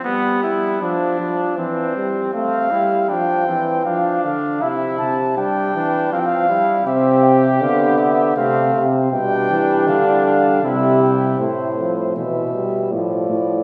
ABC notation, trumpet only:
X:1
M:3/4
L:1/8
Q:1/4=79
K:F
V:1 name="Trumpet"
=B, E D2 C2 | C E D C D2 | E2 D D C E | G4 C z |
D4 E2 | z6 |]